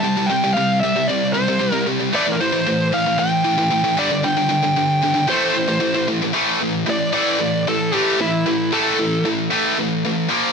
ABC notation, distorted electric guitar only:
X:1
M:4/4
L:1/16
Q:1/4=114
K:Aphr
V:1 name="Distorted electric guitar" clef=bass
[C,G,] [C,G,] [C,G,] [C,G,] [C,G,]2 [C,G,] [C,G,] [C,G,]2 [C,G,] [C,G,] [C,G,] [C,G,] [C,G,] [C,G,] | [A,,E,A,] [A,,E,] [A,,E,] [A,,E,] [A,,E,]2 [A,,E,] [A,,E,] [A,,E,]2 [A,,E,] [A,,E,] [A,,E,] [A,,E,] [G,,D,G,] [G,,D,] | [G,,D,] [G,,D,] [G,,D,] [G,,D,] [G,,D,]2 [G,,D,] [G,,D,] [A,,E,A,]2 [A,,E,] [A,,E,] [A,,E,] [A,,E,] [A,,E,] [A,,E,] | [A,,E,A,]2 [A,,E,]2 [A,,E,]2 [A,,E,A,]2 [A,,E,]2 [A,,E,]2 [A,,E,A,]2 [A,,E,]2 |
[A,,E,]2 [A,,E,A,]2 [A,,E,]2 [A,,E,]2 [A,,E,A,]2 [A,,E,]2 [A,,E,]2 [B,,F,B,]2 |]